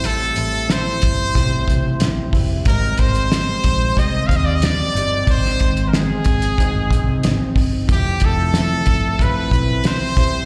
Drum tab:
HH |x-x-x-x-x-x-x-o-|x-xxx-x-x-x-x-x-|x-xxx-xxx-x-x-o-|x-x-x-x-x-x-x-x-|
SD |----o-------o---|----o-------o---|-o--o-------o---|----o-------o---|
BD |------o-o-o---o-|o-o---o-o-o-----|o-o---o-o-o---o-|o-o---o-o-o---o-|